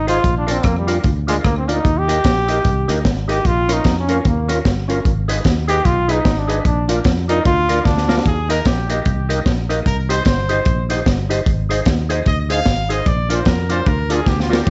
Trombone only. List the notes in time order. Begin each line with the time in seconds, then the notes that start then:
0.09 F4
0.38 D4
0.51 C4
0.65 A#3
0.78 G3
1.28 G#3
1.45 A#3
1.58 C4
1.71 D#4
1.98 G4
3.30 G4
3.46 F4
3.73 D#4
4.00 C#4
4.27 A#3
5.69 G4
5.85 F4
6.12 D#4
6.38 D4
6.66 D4
7.29 D#4
7.46 F4
7.85 D4